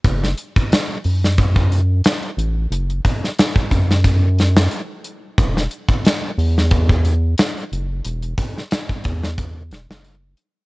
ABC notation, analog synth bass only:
X:1
M:4/4
L:1/16
Q:"Swing 16ths" 1/4=90
K:Emix
V:1 name="Analog synth bass" clef=bass
F,,,2 z4 F,,6 z2 A,,,2 | F,,,2 z4 F,,6 z4 | E,,,2 z4 E,,6 z2 F,,,2 | E,,,2 z4 E,,4 E,,, F,,,3 z2 |]